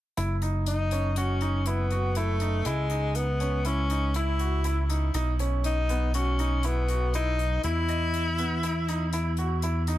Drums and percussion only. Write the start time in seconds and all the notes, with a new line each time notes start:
0.17 closed hi-hat
0.42 closed hi-hat
0.66 closed hi-hat
0.91 closed hi-hat
1.16 closed hi-hat
1.41 closed hi-hat
1.66 closed hi-hat
1.91 closed hi-hat
2.15 closed hi-hat
2.40 closed hi-hat
2.65 closed hi-hat
2.90 closed hi-hat
3.15 closed hi-hat
3.40 closed hi-hat
3.65 closed hi-hat
3.90 closed hi-hat
4.14 closed hi-hat
4.39 closed hi-hat
4.64 closed hi-hat
4.90 closed hi-hat
5.14 closed hi-hat
5.39 closed hi-hat
5.64 closed hi-hat
5.89 closed hi-hat
6.14 closed hi-hat
6.39 closed hi-hat
6.63 closed hi-hat
6.89 closed hi-hat
7.14 closed hi-hat
7.39 closed hi-hat
7.63 closed hi-hat
7.88 closed hi-hat
8.14 closed hi-hat
8.38 closed hi-hat
8.63 closed hi-hat
8.88 closed hi-hat
9.13 closed hi-hat
9.37 closed hi-hat
9.62 closed hi-hat
9.87 closed hi-hat